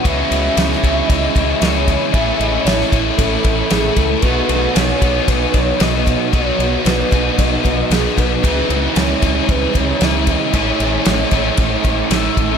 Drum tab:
RD |x-x-x-x-x-x-x-x-|x-x-x-x-x-x-x-x-|x-x-x-x-x-x-x-x-|x-x-x-x-x-x-x-x-|
SD |----oo------o---|----oo------o---|----o-------o---|----o-------o---|
BD |o-----o-o-o---o-|o-----o-o-o---o-|o-----o-o-o---o-|o-----o-o-o---o-|

RD |x-x-x-x-x-x-x-x-|x-x-x-x-x-x-x-x-|
SD |----o-------o---|----o-------o---|
BD |o-----o-o-o---o-|o-----o-o-o---o-|